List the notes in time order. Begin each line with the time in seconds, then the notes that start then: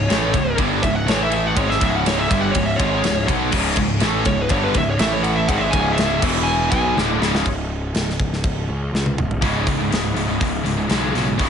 Already playing: C#4 G#4 C#5 D#5
0.08 A1 A2 E3 A3, snare, ride
0.32 C#1 C#2 G#2, kick, ride
0.55 G1 G2 D3 G3, kick, ride
0.81 C#1 C#2 G#2 E5, kick, ride
0.95 F#5
1.06 A1 A2 E3 A3 E4 B4 C#5, snare, ride
1.23 E5
1.32 E5, ride
1.46 F#5
1.55 G#1 G#2 D#3 G#3 C#4 G#4 C#5 D#5, kick, ride
1.70 E5, snare
1.80 C#1 C#2 G#2 C#3 E5, kick, ride
1.95 F#5
2.06 C#5, snare, ride
2.19 E5
2.29 G1 G2 D3 G3 E5, kick, ride
2.41 F#5
2.51 C#2 G#2 C#5, kick, ride
2.55 C#1
2.65 E5
2.76 G#1 G#2 D#3 G#3 C#5, kick, ride
3.03 C#1 C#2 G#2, snare, ride
3.28 B1 B2 F#3 B3, kick, ride
3.52 C#1 C#2 G#2 C#3, kick, crash
3.76 C#1 C#2 G#2, kick, ride
4.00 A1 A2 E3 A3, snare, ride
4.25 C#1 C#2 G#2 C#5, kick, ride
4.42 B4
4.49 G1 G2 D3 G3 C#5, kick, ride
4.64 B4
4.74 C#1 C#2 G#2 E5, kick, ride
4.90 C#5
4.98 A1 A2 E3 A3 E4 B4 E5, snare, ride
5.13 C#5
5.23 F#5, ride
5.35 E5
5.47 G#1 G#2 D#3 G#3 C#4 G#4 D#5 F#5, kick, ride
5.57 E5
5.71 C#1 C#2 G#2 C#3 G#5, kick, ride
5.92 E5
5.98 snare, ride
6.21 E1 E2 B2 E3 E4 B4 F#5, kick, crash
6.43 G#5
6.71 B1 B2 F#3 B3 C#4 G#4 D#5 G#5, kick, ride
6.95 D1 D2 A2 D3, snare
7.19 C#1 C#2 G#2 C#3, snare
7.35 snare
7.46 C#1, kick, crash
7.94 C#1, snare, crash
8.10 snare
8.19 C#1, kick
8.33 snare
8.44 C#1, kick, crash
8.69 C#2
8.93 C#2, snare
9.06 high tom
9.18 C#1, mid tom
9.31 floor tom
9.41 C#1 C#2 G#2 C#3 G#3 E4, kick, open hi-hat
9.66 C#1 C#2 G#2, kick, open hi-hat
9.78 C#2 G#2
9.90 C#1 C#2 G#2, snare, open hi-hat
10.14 C#1 C#2 G#2, open hi-hat
10.28 C#2 G#2
10.40 C#1 C#2 G#2, kick, open hi-hat
10.63 C#1 C#2 G#2, open hi-hat
10.77 C#2 G#2
10.88 B1 C#2 G#2 C#3, snare, open hi-hat
11.13 B1 C#2 G#2 C#3, snare, open hi-hat
11.26 C#2 G#2
11.38 C#1 C#2 G#2 C#3 G#3 E4, kick, open hi-hat